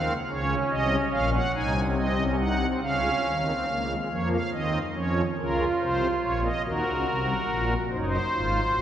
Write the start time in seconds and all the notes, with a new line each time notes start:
Already playing: D#2 D#3 C4 F5
0.30 C#2 C#3 C#4 C#5
0.70 C2 C3 D#5
1.12 A#1 A#2 F5
1.33 F#5
1.55 C2 C3 D#4 G#5
1.76 C#4
1.97 C4 D#5
2.18 C#4
2.39 D#4 F#5
2.61 C4
2.82 C#2 C#3 C#4 F5
3.25 D#2 D#3
3.46 C4
3.68 C#2 C#3 A#3
3.90 G#3
4.10 F2 F3 A#3 C#5
4.32 F5
4.52 D#2 D#3 C4 D#5
4.95 F2 F3 C#4 C#5
5.38 C#2 C#3 F4 A#4
5.81 C2 C3 C5
6.22 A#1 A#2 C#5
6.44 D#5
6.65 D#2 D#3 F#4 A#4
6.86 C#2 C#3
7.07 C2 C3
7.48 A#1 A#2
7.91 F#1 F#2 D#4 C5
7.99 C#5
8.05 C5
8.34 G#1 G#2 F4
8.74 A#1 A#2 F#4